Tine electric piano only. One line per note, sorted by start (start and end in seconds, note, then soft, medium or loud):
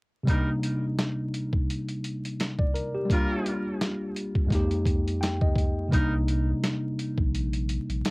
0.24 3.04 C3 medium
0.24 3.04 G3 medium
0.28 3.06 A#3 medium
0.28 3.07 D4 medium
0.32 3.08 D#4 medium
2.59 2.74 D5 medium
2.74 2.93 A#4 medium
2.95 3.28 G4 medium
3.05 4.46 G3 medium
3.05 4.47 A#3 medium
3.11 4.49 D4 medium
3.11 4.50 F4 medium
4.46 5.87 F2 medium
4.46 5.88 G#3 medium
4.51 5.89 A#3 medium
4.51 5.90 D#4 medium
4.55 5.92 G4 medium
5.21 5.40 G5 medium
5.41 5.89 D#5 medium
5.88 8.11 C3 medium
5.88 8.11 G3 medium
5.93 8.11 A#3 medium
5.93 8.11 D4 medium
5.97 8.11 D#4 medium